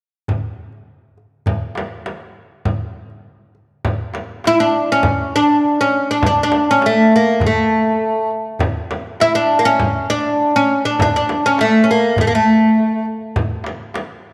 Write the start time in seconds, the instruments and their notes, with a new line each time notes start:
0.28 darbuka dum, frame drum
0.44 darbuka ka
0.73 darbuka ka
1.18 darbuka ka
1.46 darbuka dum, frame drum
1.61 darbuka ka
1.75 darbuka tek, frame drum
1.91 darbuka ka
2.06 darbuka tek, frame drum
2.21 darbuka ka
2.65 darbuka dum, frame drum
2.81 darbuka ka
3.10 darbuka ka
3.55 darbuka ka
3.85 darbuka dum, frame drum
3.99 darbuka ka
4.14 darbuka tek, frame drum
4.29 darbuka ka
4.44 oud E4, darbuka tek, frame drum
4.60 oud D4
4.92 oud C#4
5.03 frame drum, darbuka dum
5.20 darbuka ka
5.36 oud D4
5.64 darbuka ka
5.81 oud C#4
6.11 oud D4
6.22 darbuka dum, frame drum
6.26 oud D4
6.43 oud D4
6.52 darbuka tek, frame drum
6.67 oud C#4, darbuka ka
6.81 darbuka tek, frame drum
6.86 oud A3
6.96 darbuka ka
7.16 oud A#3
7.40 darbuka dum, frame drum
7.46 oud A3
8.01 darbuka ka
8.59 darbuka dum, frame drum
8.91 darbuka tek, frame drum
9.06 darbuka ka
9.20 oud E4, darbuka tek, frame drum
9.35 oud D4, darbuka ka
9.59 oud A#3
9.65 oud C#4
9.79 frame drum, darbuka dum
9.96 darbuka ka
10.10 oud D4
10.41 darbuka ka
10.56 oud C#4
10.85 oud D4
10.99 oud D4, darbuka dum, frame drum
11.16 oud D4
11.29 darbuka tek, frame drum
11.44 oud C#4, darbuka ka
11.58 oud A3, darbuka tek, frame drum
11.84 oud C#4
11.91 oud A#3
12.16 darbuka dum, frame drum
12.21 oud A3
12.27 oud A#3
12.35 oud A3
12.61 darbuka ka
12.76 darbuka ka
13.06 darbuka ka
13.21 darbuka ka
13.36 darbuka dum, frame drum
13.50 darbuka ka
13.64 darbuka tek, frame drum
13.80 darbuka ka
13.94 darbuka tek, frame drum
14.09 darbuka ka